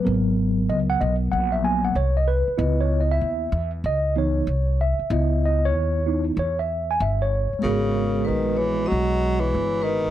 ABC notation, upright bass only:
X:1
M:4/4
L:1/16
Q:"Swing 16ths" 1/4=95
K:G#m
V:1 name="Upright bass" clef=bass
G,,,4 C,,2 B,,,2 A,,,4 ^B,,,3 z | C,,4 D,,2 E,,2 C,,4 ^B,,,3 z | C,,4 D,,4 E,,4 =G,,,3 z | G,,,4 A,,,4 B,,,4 =G,,,3 z |]